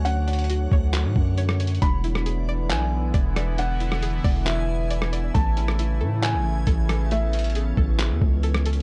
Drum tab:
HH |x-----------x--x--x--x--x-----------------------x-----------------------x-----------x---x---x---|x-----------x-----------x-----------------------x-----------------------x-----------x-----------|x-----------x-----------x-----------o-----------x-----------------------x-----------x-----------|x-----------x-----------x-----------------------x-----------------------x-----------x-----------|
CP |------------------------------------------------x-----------------------------------------------|------------------------------------------------x-----------------------------------------------|------------------------------------------------x-----------------------------------------------|------------------------------------------------x-----------------------------------------------|
SD |------------------------------------------------------------------------------r-----------------|------------------r-----------------------------------------------------------------r-----------|------------------r-----------------------------------------------------------r-----------------|------------------r-----------------------------------------------------------------r-----------|
BD |------------------------------------o-----------------------o-----------------------------------|o-----------------------------------------------------------------------o-----------------------|------------------------------------o-----------------------------------------------------------|o-----------------------------------------------------------------------o-----------------------|

HH |x-----------x--x--x--x--x-----------------------x-----------------------x-----------x---x-------|
CP |------------------------------------------------x-----------------------------------------------|
SD |------------------------------------------------------------------------------r-----------------|
BD |------------------------------------o-----------------------o-----------------------------------|